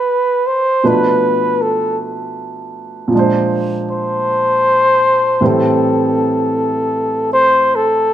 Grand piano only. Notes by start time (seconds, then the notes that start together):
Already playing: C3 G3 D4 E4 G4
0.84 B2 F3 A3 D4 B4
3.08 A#2 F3
3.14 G#3 D4
3.19 C5
5.41 A2 E3 G3 C4 C5